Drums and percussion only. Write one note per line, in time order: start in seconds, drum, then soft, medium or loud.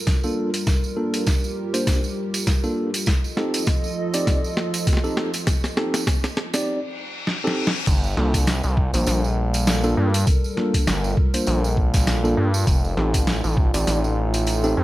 0.07 kick loud
0.07 snare medium
0.07 closed hi-hat medium
0.07 tambourine medium
0.23 tambourine soft
0.54 closed hi-hat medium
0.54 tambourine medium
0.67 kick loud
0.67 snare medium
0.67 closed hi-hat medium
0.67 tambourine medium
0.84 tambourine soft
1.14 closed hi-hat medium
1.14 tambourine medium
1.26 kick loud
1.26 snare medium
1.26 closed hi-hat medium
1.26 tambourine medium
1.44 tambourine soft
1.74 closed hi-hat medium
1.74 tambourine medium
1.87 kick loud
1.87 snare medium
1.87 closed hi-hat medium
1.87 tambourine medium
2.04 tambourine soft
2.34 closed hi-hat medium
2.34 tambourine medium
2.47 kick loud
2.47 snare medium
2.47 closed hi-hat medium
2.47 tambourine medium
2.64 tambourine soft
2.94 closed hi-hat medium
2.94 tambourine medium
3.06 kick loud
3.06 snare medium
3.06 closed hi-hat medium
3.06 tambourine medium
3.24 tambourine soft
3.37 snare medium
3.54 closed hi-hat medium
3.54 tambourine medium
3.66 kick loud
3.66 snare medium
3.66 closed hi-hat medium
3.66 tambourine medium
3.84 tambourine soft
4.14 closed hi-hat medium
4.14 tambourine medium
4.27 kick loud
4.27 snare medium
4.27 closed hi-hat medium
4.27 tambourine medium
4.44 tambourine soft
4.57 snare medium
4.74 closed hi-hat medium
4.74 tambourine medium
4.87 kick loud
4.87 snare soft
4.87 closed hi-hat medium
4.87 tambourine medium
4.93 snare medium
4.97 snare medium
5.04 tambourine soft
5.17 snare medium
5.33 closed hi-hat medium
5.33 tambourine medium
5.47 kick loud
5.47 snare medium
5.47 closed hi-hat medium
5.47 tambourine medium
5.64 snare medium
5.64 tambourine soft
5.77 snare medium
5.94 snare medium
5.94 closed hi-hat medium
5.94 tambourine medium
6.07 kick loud
6.07 snare loud
6.07 closed hi-hat medium
6.07 tambourine medium
6.24 snare medium
6.24 tambourine soft
6.37 snare loud
6.54 snare medium
6.54 closed hi-hat medium
6.54 tambourine medium
7.27 snare medium
7.47 snare medium
7.67 snare loud
7.87 kick loud
7.87 closed hi-hat medium
7.87 tambourine medium
7.87 crash loud
8.04 tambourine soft
8.17 snare medium
8.34 kick medium
8.34 closed hi-hat medium
8.34 tambourine medium
8.47 snare loud
8.47 closed hi-hat medium
8.47 tambourine medium
8.63 tambourine soft
8.77 kick loud
8.94 closed hi-hat medium
8.94 tambourine medium
9.06 snare medium
9.06 closed hi-hat medium
9.06 tambourine medium
9.24 tambourine soft
9.54 closed hi-hat medium
9.54 tambourine medium
9.67 snare loud
9.67 closed hi-hat medium
9.67 tambourine medium
9.84 tambourine soft
10.14 closed hi-hat medium
10.14 tambourine medium
10.27 kick loud
10.27 closed hi-hat medium
10.27 tambourine medium
10.44 tambourine soft
10.57 snare medium
10.74 kick medium
10.74 closed hi-hat medium
10.74 tambourine medium
10.87 snare loud
10.87 closed hi-hat medium
10.87 tambourine medium
11.04 tambourine soft
11.17 kick loud
11.34 closed hi-hat medium
11.34 tambourine medium
11.46 closed hi-hat medium
11.46 tambourine medium
11.64 tambourine soft
11.77 kick medium
11.94 kick loud
11.94 snare soft
11.94 closed hi-hat medium
11.94 tambourine medium
12.07 snare loud
12.07 closed hi-hat medium
12.07 tambourine medium
12.25 tambourine soft
12.54 tambourine medium
12.67 kick loud
12.67 closed hi-hat medium
12.67 tambourine medium
12.85 tambourine soft
12.97 snare medium
13.14 kick medium
13.14 closed hi-hat medium
13.14 tambourine medium
13.27 snare loud
13.27 closed hi-hat medium
13.27 tambourine medium
13.44 tambourine soft
13.57 kick loud
13.74 closed hi-hat medium
13.74 tambourine medium
13.87 snare soft
13.87 closed hi-hat medium
13.87 tambourine medium
14.04 tambourine soft
14.34 closed hi-hat medium
14.34 tambourine medium
14.47 closed hi-hat medium
14.47 tambourine medium
14.64 tambourine soft